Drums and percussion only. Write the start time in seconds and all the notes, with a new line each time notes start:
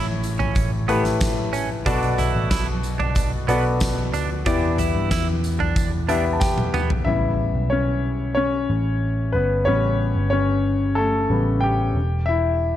0.23 closed hi-hat, tambourine
0.40 floor tom
0.55 kick, closed hi-hat, tambourine
0.89 closed hi-hat
1.05 snare, closed hi-hat
1.21 kick, snare, closed hi-hat, tambourine
1.53 closed hi-hat, tambourine
1.86 kick, closed hi-hat, tambourine
2.03 closed hi-hat
2.18 closed hi-hat, floor tom, tambourine
2.51 kick, snare, closed hi-hat, tambourine
2.83 closed hi-hat, tambourine
3.00 floor tom
3.15 kick, closed hi-hat, tambourine
3.49 closed hi-hat
3.80 kick, snare, closed hi-hat, tambourine
4.14 closed hi-hat, tambourine
4.46 kick, closed hi-hat, tambourine
4.78 closed hi-hat, floor tom, tambourine
5.11 kick, snare, closed hi-hat, tambourine
5.44 closed hi-hat, tambourine
5.60 floor tom
5.76 kick, closed hi-hat, tambourine
6.09 closed hi-hat
6.41 kick, snare, tambourine
6.58 high tom
6.74 mid tom, tambourine
6.90 floor tom